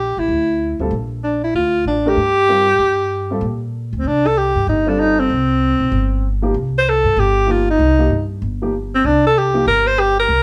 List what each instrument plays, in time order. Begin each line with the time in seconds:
Already playing: upright bass A#1, alto saxophone G4
0.17 upright bass A1, alto saxophone E4
0.28 upright bass D2
0.79 upright bass D2, grand piano G3 C4 F4 A4
0.91 upright bass A#1
1.24 alto saxophone D4
1.44 alto saxophone E4
1.54 upright bass D2, alto saxophone F4
1.85 upright bass A1, alto saxophone D4
2.06 grand piano A3 D4 G4 A#4, alto saxophone G4
2.17 upright bass G2
2.48 grand piano G3 C4 F4 A#4
2.79 upright bass G2
3.30 grand piano G3 C4 F4 A4
3.41 upright bass A#2
3.93 upright bass D2
3.97 alto saxophone C4
4.04 upright bass C2, alto saxophone D4
4.27 alto saxophone A4
4.38 alto saxophone G4
4.56 upright bass G2
4.67 upright bass G1, alto saxophone D#4
4.86 grand piano G3 C4 F4 A4, alto saxophone D4
5.00 alto saxophone D#4
5.20 alto saxophone C4
5.30 upright bass C2
5.80 upright bass B1
5.92 upright bass G1
6.42 grand piano F3 A#3 D#4 G4
6.54 upright bass C2
6.78 alto saxophone C5
6.89 alto saxophone A4
7.04 upright bass G2
7.16 upright bass G1, alto saxophone G4
7.47 grand piano F3 A#3 D#4 G4
7.51 alto saxophone F4
7.70 alto saxophone D#4
7.79 upright bass C2
7.99 grand piano F3 A#3 D#4 G4
8.10 upright bass G2
8.42 upright bass G1
8.62 grand piano F3 A#3 D#4 G4
8.95 alto saxophone C4
9.04 upright bass C2, alto saxophone D4
9.26 alto saxophone A4
9.38 alto saxophone G4
9.54 grand piano F3 A#3 D#4 G4
9.66 upright bass G1, alto saxophone A#4
9.87 alto saxophone C5
9.99 alto saxophone G4
10.19 alto saxophone A#4
10.29 upright bass C2